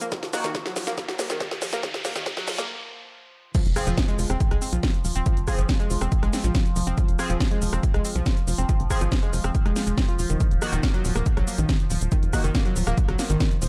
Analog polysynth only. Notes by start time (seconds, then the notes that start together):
0.33 D#3 A#3 F#4
3.76 F3 C4 G#4
5.48 F3 C4 G#4
7.19 F3 C4 G#4
8.90 F3 C4 G#4
10.62 D#3 A#3 F#4
12.33 D#3 A#3 F#4